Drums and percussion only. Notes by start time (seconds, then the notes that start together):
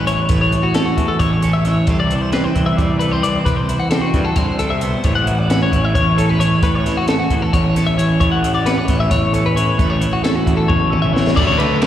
0.07 closed hi-hat
0.29 kick, closed hi-hat
0.52 closed hi-hat
0.74 snare, closed hi-hat
0.98 kick, closed hi-hat
1.20 kick, closed hi-hat
1.42 closed hi-hat
1.65 snare, closed hi-hat
1.87 kick, closed hi-hat
2.11 closed hi-hat
2.32 snare, closed hi-hat
2.56 kick, closed hi-hat
2.78 kick, closed hi-hat
3.01 closed hi-hat
3.24 closed hi-hat
3.46 kick, closed hi-hat
3.69 closed hi-hat
3.91 snare, closed hi-hat
4.14 kick, snare, closed hi-hat
4.36 kick, closed hi-hat
4.59 closed hi-hat
4.81 closed hi-hat
5.04 kick, closed hi-hat
5.27 closed hi-hat
5.50 snare, closed hi-hat
5.73 kick, closed hi-hat
5.95 kick, closed hi-hat
6.18 closed hi-hat
6.41 closed hi-hat
6.63 kick, closed hi-hat
6.86 snare, closed hi-hat
7.08 snare, closed hi-hat
7.30 kick, closed hi-hat
7.53 kick, closed hi-hat
7.76 snare, closed hi-hat
7.99 closed hi-hat
8.21 kick, closed hi-hat
8.44 closed hi-hat
8.66 snare, closed hi-hat
8.88 kick, snare, closed hi-hat
9.11 kick, closed hi-hat
9.34 closed hi-hat
9.57 closed hi-hat
9.79 kick, closed hi-hat
10.02 closed hi-hat
10.24 snare, closed hi-hat
10.47 kick, closed hi-hat
10.70 kick, high tom
10.93 mid tom
11.04 mid tom
11.16 snare
11.27 snare
11.37 kick, crash
11.60 ride
11.82 snare, ride